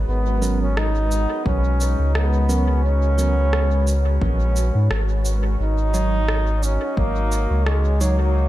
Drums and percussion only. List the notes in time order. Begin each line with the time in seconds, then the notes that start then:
0.43 shaker
0.77 cross-stick
1.12 shaker
1.46 kick
1.81 shaker
2.15 cross-stick
2.50 shaker
3.19 shaker
3.53 cross-stick
3.87 shaker
4.21 kick
4.56 shaker
4.91 cross-stick
5.25 shaker
5.94 shaker
6.28 cross-stick
6.63 shaker
6.97 kick
7.32 shaker
7.66 cross-stick
8.01 shaker